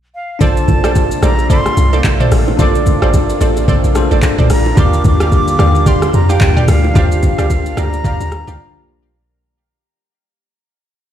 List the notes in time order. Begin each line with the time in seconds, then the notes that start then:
0.15 F5
0.39 A#1 C3 A3 A#3 D4 F4 A4 C5 D5 A5, kick, low conga, shaker
0.44 C5
0.57 shaker
0.68 A#1, kick, low bongo, low conga, shaker
0.84 A4 C5 D5, cross-stick, shaker
0.95 kick, high bongo, shaker
1.11 shaker
1.23 A#1 A4 C5 D5 A#5, cross-stick, high bongo, low bongo, shaker
1.38 high bongo, shaker
1.50 A4 C5 D5 C6, kick, low conga, shaker
1.66 cross-stick, shaker
1.77 C2, shaker
1.93 A4 C5 D5, low bongo, shaker
2.04 A#1, kick, clap, high bongo, shaker
2.20 A4 C5 D5, mid tom, shaker
2.32 A1, cross-stick, open hi-hat, shaker
2.48 low bongo
2.57 A#1 D4 F4 A4 C5 D5, kick, low conga, shaker
2.62 D5
2.75 shaker
2.86 kick, low bongo, low conga, shaker
3.02 A1 A4 C5 D5, cross-stick, shaker
3.14 kick, high bongo, shaker
3.30 shaker
3.41 A1 A4 C5 D5, high bongo, low bongo, shaker
3.57 high bongo, shaker
3.68 A#1 A4 C5 D5, kick, low conga, shaker
3.84 A#1, shaker
3.95 D4 F4 A4 C5, cross-stick, shaker
4.11 A1 A4 C5 D5, low bongo, shaker
4.22 kick, clap, high bongo, shaker
4.38 C2 A4 C5 D5, mid tom, shaker
4.50 A#1 A#5, cross-stick, open hi-hat, shaker
4.66 low bongo
4.75 D#2 D3 G3 D4 F4 G4 D5 F5 D6, kick, low conga, shaker
4.80 A#4
4.93 shaker
5.04 D#2 D6, kick, low bongo, low conga, shaker
5.20 G4 D5 F5, cross-stick, shaker
5.32 kick, high bongo, shaker
5.48 shaker
5.59 D#2 G4 D5 F5, cross-stick, high bongo, low bongo, shaker
5.75 high bongo, shaker
5.86 G4 D5 F5 C6, kick, low conga, shaker
6.02 cross-stick, shaker
6.13 F2 A#5, shaker
6.29 G4 D5 F5 G5, low bongo, shaker
6.41 D#2, kick, clap, high bongo, shaker
6.57 G4 D5 F5, mid tom, shaker
6.68 D2 F5, cross-stick, open hi-hat, shaker
6.84 low bongo
6.94 D#2 D4 F4 G4 D5 F5, kick, low conga, shaker
6.99 C5
7.12 shaker
7.22 kick, low bongo, low conga, shaker
7.38 D2 G4 D5 F5, cross-stick, shaker
7.50 kick, high bongo, shaker
7.66 shaker
7.77 D2 G4 D5 F5 A#5, cross-stick, high bongo, low bongo, shaker
7.93 high bongo, shaker
8.04 D#2 G4 D5 F5, kick, low conga, shaker
8.20 D#2, shaker
8.32 cross-stick, shaker
8.47 D2 G4 D5 F5, low bongo, shaker